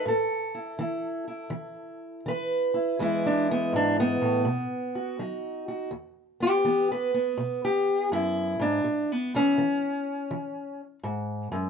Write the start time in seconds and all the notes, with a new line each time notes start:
0.06 A2 A4
0.55 E4
0.79 E3 E4
1.28 E4
1.50 E3
2.26 E3 B4
2.74 E4
2.99 E2 E3 G#3 B3 E4
3.26 D4
3.51 B3
3.73 G#2 D4
4.00 B3
4.21 A2
4.45 B2
4.95 F#4
5.19 F#3 D#4
5.68 F#4
5.91 E2
6.40 B3 G4
6.65 E3 B3
6.92 B4
7.14 B3
7.38 B2
7.65 G4
8.12 F#2 E4
8.59 G#2 D4
8.84 A2
9.12 B3
9.35 E3 C#4
9.58 E3
10.31 E3
11.03 G#2
11.52 F#2